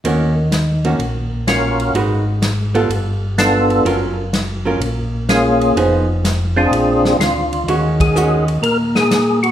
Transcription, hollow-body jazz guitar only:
X:1
M:4/4
L:1/8
Q:"Swing" 1/4=126
K:Gblyd
V:1 name="Hollow-body jazz guitar"
[E,B,DG] z2 [E,B,DG] z4 | [A,EG_c] z2 [=G,_CF=A] z4 | [G,DFB] z2 [G,DFB] z4 | [F,_CEA] z2 [A,=DF] z4 |
[E,A,DG]2 [E,A,DG] z4 z |]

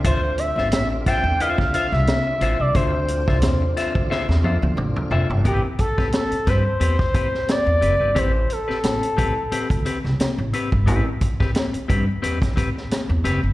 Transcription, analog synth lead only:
X:1
M:4/4
L:1/16
Q:"Swing 16ths" 1/4=89
K:Am
V:1 name="Analog synth lead"
c2 e2 e2 g2 f2 f e4 d | c8 z8 | G2 A2 A2 c2 c4 d4 | c2 A8 z6 |
z16 |]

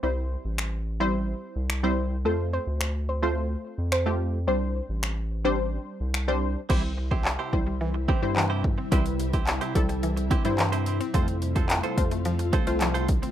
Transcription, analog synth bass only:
X:1
M:4/4
L:1/16
Q:1/4=108
K:C
V:1 name="Analog synth bass" clef=bass
C,,3 A,,,8 C,,4- C,, | F,,3 D,,8 F,,4- F,, | C,,3 A,,,8 C,,4- C,, | C,,6 C,,4- C,, G,,4- G,, |
C,,6 C,,4- C,, G,,4- G,, | F,,6 F,,4- F,, C,,4- C,, |]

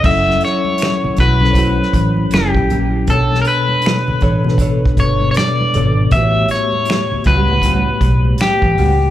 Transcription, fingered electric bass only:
X:1
M:4/4
L:1/16
Q:"Swing 16ths" 1/4=79
K:F#phr
V:1 name="Fingered electric bass" clef=bass
F,,,2 z4 B,,,4 A,,,2 F,,, ^A,,, A,,,2 | B,,,2 z4 A,,,4 G,,,2 z2 ^G,,,2 | A,,,2 z4 C,,4 B,,,2 z A,,, C,,2 |]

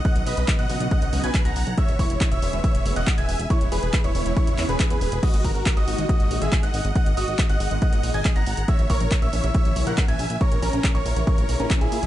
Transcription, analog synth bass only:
X:1
M:4/4
L:1/16
Q:1/4=139
K:G#m
V:1 name="Analog synth bass" clef=bass
z B,,, B,,, B,,, z B,,, B,,, B,,, z B,,, C,, B,,, z B,,, B,,, B,,, | z E,,, E,,, E,,, z E,,, E,,, E,,, z E,,, F,,, E,,, z E,,, E,,, E,,, | z E,,, E,,, E,,, z E,,, E,,, E,,, z E,,, E,, E,,, z E,, E,,, E,,, | z G,,, G,,, G,,, z G,,, G,,, G,,, z G,,, A,,, G,,, z G,,, G,,, G,,, |
z G,,, G,,, G,,, z G,,, G,,, G,,, z G,,, A,,, G,,, z G,,, G,,, G,,, | z A,,, A,,, A,,, z A,,, A,,, A,,, z A,,, B,,, A,,, z A,,, A,,, A,,, | z A,,, A,,, A,,, z A,,, A,,, A,,, z A,,, B,,, A,,, z A,,, A,, A,,, |]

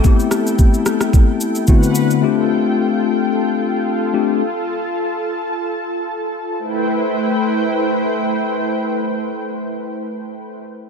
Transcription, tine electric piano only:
X:1
M:4/4
L:1/8
Q:"Swing 16ths" 1/4=110
K:Am
V:1 name="Tine electric piano"
[A,B,CEG]6 [D,A,B,CE^F]2 | [A,CDFG]6- [A,CDFG] [A,CDFG] | z8 | z8 |
z8 |]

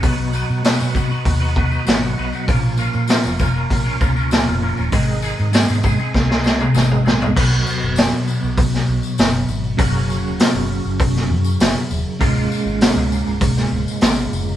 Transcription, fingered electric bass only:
X:1
M:4/4
L:1/16
Q:1/4=99
K:Cblyd
V:1 name="Fingered electric bass" clef=bass
C,,3 C,2 C,2 z E,,4 A,,,2 C,, z | B,,,3 B,,2 F,,,3 B,,,2 D,,3 F,,,2 E,,, | A,,,3 A,,2 A,,2 z =C,,4 A,,,2 B,,,2 | C,,2 z G,,,2 C,2 C,,3 C,, z G,,,2 A,,,2 |
G,,,3 E,,, z G,,,2 G,,,3 G,,2 G,,, z E,,, z | D,,,2 z A,,,2 D,,2 D,,,3 D,,, z A,,,2 F,,,2 |]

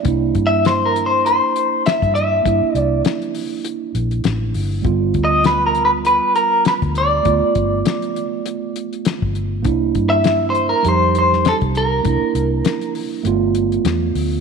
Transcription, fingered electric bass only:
X:1
M:4/4
L:1/16
Q:"Swing 16ths" 1/4=100
K:Cmix
V:1 name="Fingered electric bass" clef=bass
C,,2 G,,8 z3 G,,3 | G,, z C,,2 z6 B,,,2 A,,,2 G,,,2 | G,,,2 D,,8 z3 D,,3 | D,, z G,,,2 z8 z G,,,3 |
C,,2 G,,6 F,,4- F,, C,,3 | C,, z C,,2 z4 G,,,4 E,,2 D,,2 |]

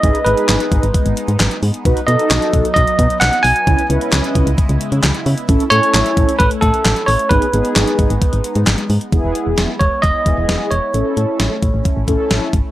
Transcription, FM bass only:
X:1
M:4/4
L:1/16
Q:1/4=132
K:E
V:1 name="FM bass" clef=bass
G,,, z G,,, z G,,, z G,,, G,,, z G,,, z G,, G,,, z G,, z | B,,, z B,, z B,,, z B,,, z B,,, z B,, z B,,, z B,,, z | C,, z C,, z C,, z C,, C,, z C,, z C, C,, z C, z | A,,, z A,, z A,,, z A,,, z A,,, z A,, z A,,, z A,,, z |
G,,, z G,,, z G,,, z G,,, G,,, z G,,, z G,, G,,, z G,, z | E,,, E,,, z E,,, E,,, z E,,, z E,,, z E,,, E,,, E,,, z E,,, z | A,,, z A,, z A,,, z A,,, A,,, z A,,, A,,, z A,,, z G,,, z |]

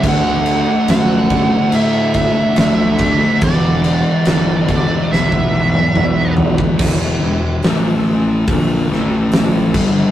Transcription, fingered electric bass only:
X:1
M:4/4
L:1/8
Q:1/4=71
K:Dmix
V:1 name="Fingered electric bass" clef=bass
D,,2 F,,2 A,,2 D,,2 | E,,,2 G,,,2 B,,,2 B,,,2 | E,,, E,,, A,,,2 ^A,,, =A,,,2 G,,, |]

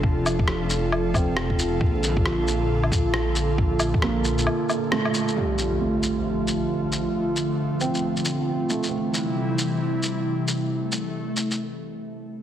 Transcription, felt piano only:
X:1
M:4/4
L:1/16
Q:"Swing 16ths" 1/4=135
K:Dm
V:1 name="Felt piano"
D3 z6 z C6- | C z12 z3 | z4 B,6- B, z A,4 | G,4 A,6- A, z4 z |
z6 C6- C z A, C- | C3 z12 z | z16 |]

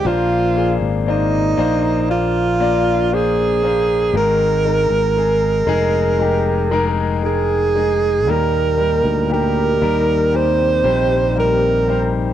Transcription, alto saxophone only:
X:1
M:4/4
L:1/16
Q:1/4=58
K:Eb
V:1 name="Alto saxophone"
F3 z E4 F4 A4 | B8- B3 z A4 | B4 B4 c4 B3 z |]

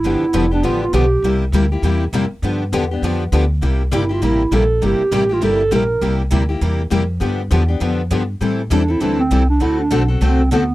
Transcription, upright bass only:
X:1
M:4/4
L:1/8
Q:"Swing" 1/4=201
K:C
V:1 name="Upright bass" clef=bass
G,,, z F,,,2 A,,,2 B,,,2 | C,,2 D,,2 E,,2 F,, z | G,,2 E,,2 F,,2 D,,2 | C,,2 G,,,2 A,,,2 _B,,,2 |
G,,, z A,,,2 G,,,2 _B,,,2 | C,,2 D,,2 E,,2 F,,2 | G,,2 E,,2 F,,2 G,,2 | A,,2 E,,2 D,,2 C,,2 |
D,,2 B,,,2 C,,2 D,,2 |]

